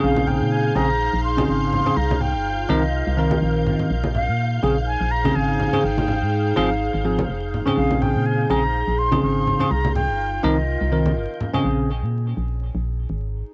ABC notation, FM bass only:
X:1
M:4/4
L:1/16
Q:"Swing 16ths" 1/4=124
K:Bbdor
V:1 name="FM bass" clef=bass
B,,,3 B,,3 B,,,3 B,,,3 A,,,3 z | C,,3 G,,,3 C,,3 C,,3 B,,,3 z | B,,,3 B,,3 B,,,3 B,,,3 A,,,3 z | A,,,3 A,,3 A,,,3 A,,,3 F,,,3 z |
B,,,3 B,,3 B,,,3 B,,,3 A,,,3 z | C,,3 G,,,3 C,,3 C,,3 G,,, z3 | B,,,3 B,,3 B,,,3 B,,,3 A,,,3 z |]